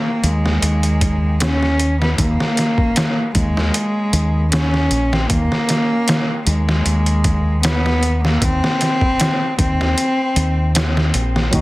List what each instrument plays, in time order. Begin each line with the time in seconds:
Already playing: cello A#3
0.23 fingered electric bass D#2, cello G#3, closed hi-hat
0.46 snare
0.62 fingered electric bass D#2, closed hi-hat
0.83 closed hi-hat
1.01 kick, closed hi-hat
1.40 cello C#4, snare, closed hi-hat
1.63 snare
1.80 closed hi-hat
2.01 cello B3, snare
2.18 fingered electric bass D#2, cello A#3, kick, closed hi-hat
2.40 snare
2.57 snare, closed hi-hat
2.78 kick
2.96 snare, closed hi-hat
3.35 fingered electric bass D#2, cello G#3, kick, closed hi-hat
3.57 snare
3.74 closed hi-hat
4.13 fingered electric bass D#2, closed hi-hat
4.52 cello C#4, snare, closed hi-hat
4.74 snare
4.90 fingered electric bass A#1, closed hi-hat
5.12 cello C4, snare
5.30 fingered electric bass D#2, cello A#3, kick, closed hi-hat
5.52 snare
5.69 snare, closed hi-hat
6.08 snare, closed hi-hat
6.47 fingered electric bass D#2, cello G#3, closed hi-hat
6.69 snare
6.86 fingered electric bass D#2, closed hi-hat
7.06 closed hi-hat
7.24 kick, closed hi-hat
7.63 cello B3, snare, closed hi-hat
7.86 snare
8.03 closed hi-hat
8.24 cello A#3, snare
8.42 fingered electric bass D#2, cello C4, kick, closed hi-hat
8.64 snare
8.81 snare, closed hi-hat
9.01 kick
9.20 snare, closed hi-hat
9.59 fingered electric bass D#2, cello C4, kick, closed hi-hat
9.81 snare
9.98 closed hi-hat
10.36 fingered electric bass D#2, closed hi-hat
10.75 snare, closed hi-hat
10.97 snare
11.14 fingered electric bass A#1, closed hi-hat
11.36 snare
11.51 fingered electric bass D#2, nylon-string guitar D#3, tine electric piano F#3 A#3 D#4 F#4, kick, closed hi-hat